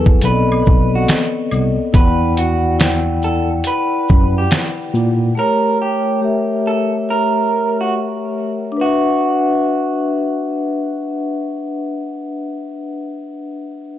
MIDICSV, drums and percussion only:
0, 0, Header, 1, 2, 480
1, 0, Start_track
1, 0, Key_signature, 2, "major"
1, 0, Tempo, 857143
1, 1085, Time_signature, 4, 2, 24, 8
1, 7832, End_track
2, 0, Start_track
2, 0, Title_t, "Drums"
2, 35, Note_on_c, 9, 36, 85
2, 91, Note_off_c, 9, 36, 0
2, 120, Note_on_c, 9, 42, 91
2, 132, Note_on_c, 9, 82, 67
2, 176, Note_off_c, 9, 42, 0
2, 188, Note_off_c, 9, 82, 0
2, 290, Note_on_c, 9, 76, 74
2, 346, Note_off_c, 9, 76, 0
2, 368, Note_on_c, 9, 82, 45
2, 369, Note_off_c, 9, 82, 0
2, 369, Note_on_c, 9, 82, 52
2, 376, Note_on_c, 9, 36, 89
2, 425, Note_off_c, 9, 82, 0
2, 432, Note_off_c, 9, 36, 0
2, 607, Note_on_c, 9, 42, 75
2, 608, Note_on_c, 9, 82, 62
2, 612, Note_on_c, 9, 38, 102
2, 615, Note_on_c, 9, 26, 83
2, 663, Note_off_c, 9, 42, 0
2, 664, Note_off_c, 9, 82, 0
2, 668, Note_off_c, 9, 38, 0
2, 671, Note_off_c, 9, 26, 0
2, 848, Note_on_c, 9, 76, 64
2, 848, Note_on_c, 9, 82, 45
2, 849, Note_off_c, 9, 82, 0
2, 849, Note_on_c, 9, 82, 50
2, 904, Note_off_c, 9, 76, 0
2, 905, Note_off_c, 9, 82, 0
2, 1085, Note_on_c, 9, 42, 67
2, 1086, Note_on_c, 9, 36, 117
2, 1141, Note_off_c, 9, 42, 0
2, 1142, Note_off_c, 9, 36, 0
2, 1328, Note_on_c, 9, 42, 45
2, 1328, Note_on_c, 9, 82, 42
2, 1384, Note_off_c, 9, 42, 0
2, 1384, Note_off_c, 9, 82, 0
2, 1566, Note_on_c, 9, 42, 61
2, 1572, Note_on_c, 9, 38, 109
2, 1575, Note_on_c, 9, 26, 90
2, 1622, Note_off_c, 9, 42, 0
2, 1628, Note_off_c, 9, 38, 0
2, 1631, Note_off_c, 9, 26, 0
2, 1805, Note_on_c, 9, 82, 47
2, 1861, Note_off_c, 9, 82, 0
2, 2038, Note_on_c, 9, 42, 95
2, 2094, Note_off_c, 9, 42, 0
2, 2287, Note_on_c, 9, 82, 51
2, 2295, Note_on_c, 9, 36, 95
2, 2343, Note_off_c, 9, 82, 0
2, 2351, Note_off_c, 9, 36, 0
2, 2525, Note_on_c, 9, 42, 70
2, 2530, Note_on_c, 9, 38, 99
2, 2533, Note_on_c, 9, 26, 87
2, 2581, Note_off_c, 9, 42, 0
2, 2586, Note_off_c, 9, 38, 0
2, 2589, Note_off_c, 9, 26, 0
2, 2770, Note_on_c, 9, 82, 52
2, 2826, Note_off_c, 9, 82, 0
2, 7832, End_track
0, 0, End_of_file